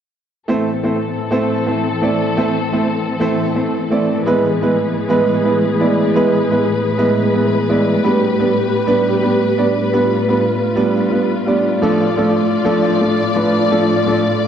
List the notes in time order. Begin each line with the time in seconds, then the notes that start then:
0.48 A2 E3 A3 C4 E4 A4 C5
0.83 A3 C4 E4 C5
1.31 A3 C4 E4 C5
1.66 A3 C4 E4 C5
2.02 A3 C4 E4 D5
2.37 A3 C4 E4 C5
2.73 A3 C4 E4 C5
3.20 A3 C4 E4 C5
3.55 A3 C4 E4 C5
3.91 A3 C4 E4 D5
4.26 G#3 B3 E4 G#4 B4
4.61 G#3 B3 E4 B4
5.09 G#3 B3 E4 B4
5.44 G#3 B3 E4 B4
5.80 G#3 B3 E4 D5
6.15 G#3 B3 E4 B4
6.50 G#3 B3 E4 B4
6.98 G#3 B3 E4 B4
7.33 G#3 B3 E4 B4
7.69 G#3 B3 E4 D5
8.04 G3 A3 B3 D4 G4 B4
8.39 G3 B3 D4 B4
8.87 G3 B3 D4 B4
9.22 G3 B3 D4 B4
9.57 G3 B3 D4 D5
9.93 G3 B3 D4 F4 B4
10.28 G3 B3 D4 B4
10.76 G3 B3 D4 B4
11.11 G3 B3 D4 B4
11.47 G3 B3 D4 D5
11.82 A2 F3 A3 D4 A4 D5
12.17 F3 A3 D4 A4
12.65 F3 A3 D4 A4
13.00 F3 A3 D4 A4
13.36 F3 A3 D4 B4
13.71 F3 A3 D4 A4
14.06 F3 A3 D4 A4